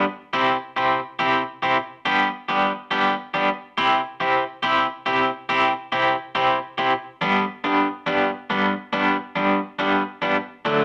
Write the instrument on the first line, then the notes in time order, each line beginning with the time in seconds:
clean electric guitar
0.33 C3 C4 E4 G4
0.76 C3 C4 E4 G4
1.19 C3 C4 E4 G4
1.62 C3 C4 E4 G4
2.05 G3 B3 D4 G4
2.48 G3 B3 D4 G4
2.91 G3 B3 D4 G4
3.34 G3 B3 D4 G4
3.77 C3 C4 E4 G4
4.20 C3 C4 E4 G4
4.63 C3 C4 E4 G4
5.06 C3 C4 E4 G4
5.49 C3 C4 E4 G4
5.92 C3 C4 E4 G4
6.35 C3 C4 E4 G4
6.78 C3 C4 E4 G4
7.21 G2 G3 B3 D4
7.64 G2 G3 B3 D4
8.06 G2 G3 B3 D4
8.50 G2 G3 B3 D4
8.93 G2 G3 B3 D4
9.36 G2 G3 B3 D4
9.79 G2 G3 B3 D4
10.22 G2 G3 B3 D4
10.65 D3 F#3 A3 D4